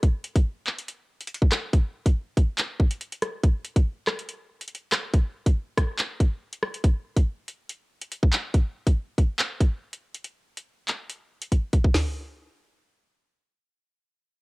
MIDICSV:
0, 0, Header, 1, 2, 480
1, 0, Start_track
1, 0, Tempo, 425532
1, 34, Time_signature, 4, 2, 24, 8
1, 16254, End_track
2, 0, Start_track
2, 0, Title_t, "Drums"
2, 34, Note_on_c, 9, 36, 108
2, 34, Note_on_c, 9, 42, 80
2, 147, Note_off_c, 9, 36, 0
2, 147, Note_off_c, 9, 42, 0
2, 273, Note_on_c, 9, 42, 84
2, 385, Note_off_c, 9, 42, 0
2, 402, Note_on_c, 9, 36, 101
2, 403, Note_on_c, 9, 42, 82
2, 514, Note_off_c, 9, 36, 0
2, 516, Note_off_c, 9, 42, 0
2, 755, Note_on_c, 9, 39, 73
2, 867, Note_off_c, 9, 39, 0
2, 886, Note_on_c, 9, 42, 81
2, 996, Note_off_c, 9, 42, 0
2, 996, Note_on_c, 9, 42, 89
2, 1109, Note_off_c, 9, 42, 0
2, 1361, Note_on_c, 9, 42, 52
2, 1436, Note_off_c, 9, 42, 0
2, 1436, Note_on_c, 9, 42, 70
2, 1516, Note_off_c, 9, 42, 0
2, 1516, Note_on_c, 9, 42, 85
2, 1601, Note_on_c, 9, 36, 102
2, 1629, Note_off_c, 9, 42, 0
2, 1712, Note_on_c, 9, 42, 82
2, 1713, Note_off_c, 9, 36, 0
2, 1713, Note_on_c, 9, 37, 88
2, 1713, Note_on_c, 9, 39, 103
2, 1825, Note_off_c, 9, 42, 0
2, 1826, Note_off_c, 9, 37, 0
2, 1826, Note_off_c, 9, 39, 0
2, 1954, Note_on_c, 9, 36, 111
2, 1954, Note_on_c, 9, 42, 78
2, 2067, Note_off_c, 9, 36, 0
2, 2067, Note_off_c, 9, 42, 0
2, 2321, Note_on_c, 9, 36, 101
2, 2323, Note_on_c, 9, 42, 85
2, 2434, Note_off_c, 9, 36, 0
2, 2436, Note_off_c, 9, 42, 0
2, 2674, Note_on_c, 9, 36, 96
2, 2677, Note_on_c, 9, 42, 77
2, 2787, Note_off_c, 9, 36, 0
2, 2790, Note_off_c, 9, 42, 0
2, 2912, Note_on_c, 9, 39, 127
2, 2916, Note_on_c, 9, 42, 88
2, 3025, Note_off_c, 9, 39, 0
2, 3029, Note_off_c, 9, 42, 0
2, 3154, Note_on_c, 9, 36, 101
2, 3267, Note_off_c, 9, 36, 0
2, 3279, Note_on_c, 9, 42, 93
2, 3391, Note_off_c, 9, 42, 0
2, 3393, Note_on_c, 9, 42, 82
2, 3506, Note_off_c, 9, 42, 0
2, 3521, Note_on_c, 9, 42, 84
2, 3632, Note_off_c, 9, 42, 0
2, 3632, Note_on_c, 9, 42, 85
2, 3633, Note_on_c, 9, 37, 87
2, 3745, Note_off_c, 9, 42, 0
2, 3746, Note_off_c, 9, 37, 0
2, 3874, Note_on_c, 9, 36, 113
2, 3874, Note_on_c, 9, 42, 81
2, 3987, Note_off_c, 9, 36, 0
2, 3987, Note_off_c, 9, 42, 0
2, 4112, Note_on_c, 9, 42, 82
2, 4225, Note_off_c, 9, 42, 0
2, 4241, Note_on_c, 9, 36, 106
2, 4243, Note_on_c, 9, 42, 86
2, 4354, Note_off_c, 9, 36, 0
2, 4356, Note_off_c, 9, 42, 0
2, 4594, Note_on_c, 9, 37, 102
2, 4594, Note_on_c, 9, 39, 74
2, 4707, Note_off_c, 9, 37, 0
2, 4707, Note_off_c, 9, 39, 0
2, 4725, Note_on_c, 9, 42, 80
2, 4836, Note_off_c, 9, 42, 0
2, 4836, Note_on_c, 9, 42, 87
2, 4949, Note_off_c, 9, 42, 0
2, 5201, Note_on_c, 9, 42, 73
2, 5276, Note_off_c, 9, 42, 0
2, 5276, Note_on_c, 9, 42, 70
2, 5356, Note_off_c, 9, 42, 0
2, 5356, Note_on_c, 9, 42, 73
2, 5469, Note_off_c, 9, 42, 0
2, 5552, Note_on_c, 9, 42, 81
2, 5553, Note_on_c, 9, 37, 91
2, 5553, Note_on_c, 9, 39, 104
2, 5665, Note_off_c, 9, 42, 0
2, 5666, Note_off_c, 9, 37, 0
2, 5666, Note_off_c, 9, 39, 0
2, 5794, Note_on_c, 9, 36, 108
2, 5794, Note_on_c, 9, 42, 74
2, 5907, Note_off_c, 9, 36, 0
2, 5907, Note_off_c, 9, 42, 0
2, 6161, Note_on_c, 9, 36, 96
2, 6163, Note_on_c, 9, 42, 81
2, 6274, Note_off_c, 9, 36, 0
2, 6276, Note_off_c, 9, 42, 0
2, 6514, Note_on_c, 9, 36, 87
2, 6514, Note_on_c, 9, 37, 101
2, 6517, Note_on_c, 9, 42, 72
2, 6627, Note_off_c, 9, 36, 0
2, 6627, Note_off_c, 9, 37, 0
2, 6630, Note_off_c, 9, 42, 0
2, 6753, Note_on_c, 9, 39, 121
2, 6756, Note_on_c, 9, 42, 83
2, 6865, Note_off_c, 9, 39, 0
2, 6869, Note_off_c, 9, 42, 0
2, 6994, Note_on_c, 9, 36, 97
2, 6997, Note_on_c, 9, 42, 77
2, 7107, Note_off_c, 9, 36, 0
2, 7110, Note_off_c, 9, 42, 0
2, 7362, Note_on_c, 9, 42, 76
2, 7473, Note_on_c, 9, 37, 88
2, 7474, Note_off_c, 9, 42, 0
2, 7586, Note_off_c, 9, 37, 0
2, 7603, Note_on_c, 9, 42, 77
2, 7714, Note_off_c, 9, 42, 0
2, 7714, Note_on_c, 9, 36, 110
2, 7714, Note_on_c, 9, 42, 77
2, 7827, Note_off_c, 9, 36, 0
2, 7827, Note_off_c, 9, 42, 0
2, 8081, Note_on_c, 9, 36, 97
2, 8083, Note_on_c, 9, 42, 83
2, 8194, Note_off_c, 9, 36, 0
2, 8196, Note_off_c, 9, 42, 0
2, 8437, Note_on_c, 9, 42, 73
2, 8550, Note_off_c, 9, 42, 0
2, 8676, Note_on_c, 9, 42, 84
2, 8789, Note_off_c, 9, 42, 0
2, 9039, Note_on_c, 9, 42, 87
2, 9152, Note_off_c, 9, 42, 0
2, 9154, Note_on_c, 9, 42, 92
2, 9267, Note_off_c, 9, 42, 0
2, 9281, Note_on_c, 9, 36, 99
2, 9392, Note_on_c, 9, 42, 82
2, 9393, Note_off_c, 9, 36, 0
2, 9393, Note_on_c, 9, 39, 100
2, 9505, Note_off_c, 9, 42, 0
2, 9506, Note_off_c, 9, 39, 0
2, 9634, Note_on_c, 9, 36, 105
2, 9634, Note_on_c, 9, 42, 76
2, 9747, Note_off_c, 9, 36, 0
2, 9747, Note_off_c, 9, 42, 0
2, 10002, Note_on_c, 9, 36, 98
2, 10003, Note_on_c, 9, 42, 84
2, 10114, Note_off_c, 9, 36, 0
2, 10116, Note_off_c, 9, 42, 0
2, 10355, Note_on_c, 9, 36, 88
2, 10357, Note_on_c, 9, 42, 70
2, 10467, Note_off_c, 9, 36, 0
2, 10470, Note_off_c, 9, 42, 0
2, 10593, Note_on_c, 9, 39, 120
2, 10596, Note_on_c, 9, 42, 83
2, 10706, Note_off_c, 9, 39, 0
2, 10709, Note_off_c, 9, 42, 0
2, 10835, Note_on_c, 9, 36, 95
2, 10837, Note_on_c, 9, 42, 75
2, 10947, Note_off_c, 9, 36, 0
2, 10950, Note_off_c, 9, 42, 0
2, 11202, Note_on_c, 9, 42, 75
2, 11315, Note_off_c, 9, 42, 0
2, 11444, Note_on_c, 9, 42, 76
2, 11555, Note_off_c, 9, 42, 0
2, 11555, Note_on_c, 9, 42, 75
2, 11667, Note_off_c, 9, 42, 0
2, 11924, Note_on_c, 9, 42, 82
2, 12037, Note_off_c, 9, 42, 0
2, 12275, Note_on_c, 9, 39, 70
2, 12278, Note_on_c, 9, 42, 72
2, 12388, Note_off_c, 9, 39, 0
2, 12391, Note_off_c, 9, 42, 0
2, 12517, Note_on_c, 9, 42, 81
2, 12630, Note_off_c, 9, 42, 0
2, 12879, Note_on_c, 9, 42, 85
2, 12992, Note_off_c, 9, 42, 0
2, 12994, Note_on_c, 9, 36, 54
2, 12995, Note_on_c, 9, 42, 90
2, 13107, Note_off_c, 9, 36, 0
2, 13107, Note_off_c, 9, 42, 0
2, 13233, Note_on_c, 9, 42, 75
2, 13234, Note_on_c, 9, 36, 86
2, 13346, Note_off_c, 9, 42, 0
2, 13347, Note_off_c, 9, 36, 0
2, 13361, Note_on_c, 9, 36, 86
2, 13474, Note_off_c, 9, 36, 0
2, 13474, Note_on_c, 9, 38, 100
2, 13474, Note_on_c, 9, 43, 100
2, 13474, Note_on_c, 9, 46, 84
2, 13587, Note_off_c, 9, 38, 0
2, 13587, Note_off_c, 9, 43, 0
2, 13587, Note_off_c, 9, 46, 0
2, 16254, End_track
0, 0, End_of_file